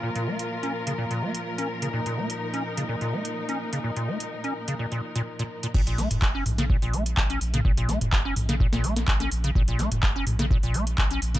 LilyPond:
<<
  \new Staff \with { instrumentName = "String section" } { \time 4/4 \key bes \minor \tempo 4 = 126 << { <bes, f bes'>1~ | <bes, f bes'>1~ | <bes, f bes'>1 | r1 |
r1 | r1 | } \\ { f'1 | ees'1~ | ees'1 | r1 |
r1 | r1 | } >> }
  \new Staff \with { instrumentName = "Acid bass" } { \clef bass \time 4/4 \key bes \minor bes,16 bes,16 bes16 r8 des'16 r16 des16 bes,16 bes,16 bes16 r8 des'16 r16 des16 | bes,16 bes,16 bes16 r8 des'16 r16 des16 bes,16 bes,16 bes16 r8 des'16 r16 des16 | bes,16 bes,16 bes16 r8 des'16 r16 des16 bes,16 bes,16 r16 bes,16 r16 bes,16 r16 bes,16 | bes,16 bes,16 bes16 r8 des'16 r16 des16 bes,16 bes,16 bes16 r8 des'16 r16 des16 |
bes,16 bes,16 bes16 r8 des'16 r16 des16 bes,16 bes,16 bes16 r8 des'16 r16 des16 | bes,16 bes,16 bes16 r8 des'16 r16 des16 bes,16 bes,16 bes16 r8 des'16 r16 des16 | }
  \new Staff \with { instrumentName = "Analog synth bass" } { \clef bass \time 4/4 \key bes \minor r1 | r1 | r1 | bes,,8. f,,8. bes,,8. bes,,8. bes,,8 bes,,8 |
bes,,8. f,,8. bes,,8. bes,,8. bes,,8 bes,,8 | bes,,8. f,,8. bes,,8. bes,,8. bes,,8 bes,,8 | }
  \new DrumStaff \with { instrumentName = "Drums" } \drummode { \time 4/4 r16 hh8 hh16 r16 hh8 hh16 r16 hh8 hh16 r16 hh8 hh16 | r16 hh8 hh16 r16 hh8 hh16 r16 hh8 hh16 r16 hh8 hh16 | r16 hh8 hh16 r16 hh8 hh16 r16 hh8 hh16 r16 hh8 hh16 | <cymc bd>16 hh16 <hho sn>16 <hh toml>16 <hc bd>8 <hho toml>16 <hh sn>16 bd16 hho16 hho16 hh16 <hc bd>16 hh16 hho16 <hh sn toml>16 |
bd16 hh16 <hho sn>16 <hh toml>16 <hc bd>8 <hho toml>16 <hh sn>16 bd16 <hho sn>16 hho16 <hh sn>16 <hc bd>16 <hh sn>16 hho16 hh16 | bd16 hh16 <hho sn>16 <hh toml>16 <hc bd>8 <hho toml>16 <hh sn>16 bd16 hho16 hho16 hh16 <hc bd>16 hh16 hho16 <hh sn toml>16 | }
>>